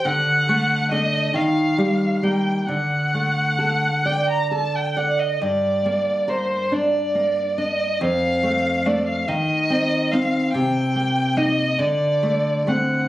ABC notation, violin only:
X:1
M:6/8
L:1/16
Q:3/8=46
K:Dphr
V:1 name="Violin"
^f4 e2 =f4 g2 | ^f6 g b a g f e | d4 c2 d4 e2 | f4 d f e4 f2 |
g4 e2 d4 ^f2 |]